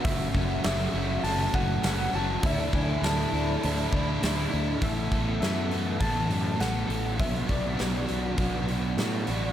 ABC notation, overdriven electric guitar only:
X:1
M:4/4
L:1/8
Q:1/4=101
K:A
V:1 name="Overdriven electric guitar"
[F,,C,F,A,CF] [F,A,CF] [F,A,CF] [F,A,CF] [F,,C,F,A,CF] [F,A,CF] [F,A,CF] [F,A,CF] | [D,A,DE] [A,DE] [D,A,DE] [A,DE] [D,A,DE] [A,DE] [D,A,DE] [A,DE] | [A,,E,A,B,A] [A,B,A] [E,A,B,A] [A,B,A] [A,,E,A,B,A] [A,B,A] [E,A,B,A] [A,B,A] | [B,,F,B,DF] [B,DF] [F,B,DF] [B,DF] [B,,F,B,DF] [B,DF] [F,B,DF] [B,DF] |]